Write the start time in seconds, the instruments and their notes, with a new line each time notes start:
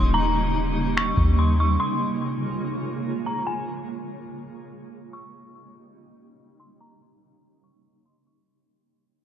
Already playing: 808-style bass D#1, ambient pad C#3 G3 A#3 D#4, synth texture C#4 G4 D#5, synth bell C6
0.14 synth bell A#5
0.97 synth bell C#6, finger snap
1.17 808-style bass D#2, kick
1.39 synth bell C6
1.60 synth bell C#6
1.80 ambient pad G#3 F4, synth texture A#3 G#4 C#5, synth bell C6
3.26 synth bell A#5
3.47 synth bell G#5
5.13 ambient pad C#3 G3 A#3 D#4, synth texture C#4 G4 D#5, synth bell C#6
6.60 synth bell C6
6.81 synth bell A#5
7.64 synth bell C#6
8.06 synth bell C6
8.27 synth bell C#6